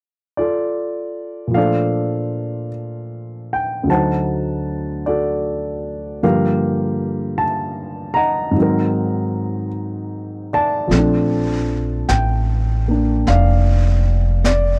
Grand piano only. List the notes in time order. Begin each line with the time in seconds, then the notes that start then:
0.37 F4 A4 D5
1.47 A#2 F3
1.53 A3 D4 D5 F5
1.57 A4 C5
3.53 G5
3.83 D2 D3
3.89 F#3 D#4 C5 F#5 A5
3.94 C5
5.06 F#4 A4 D5
6.23 G2 D3 F3 A#3 G4 A#4 F5
7.38 A5
8.14 D#5 F#5 A#5
8.51 G#2 D#3
8.56 F#3 C4
8.62 A#4
10.53 D5 A5
10.88 F3 A3
10.94 C4
10.98 D4
12.09 G5
12.88 A#3 D4
13.28 D5 F5
14.46 D5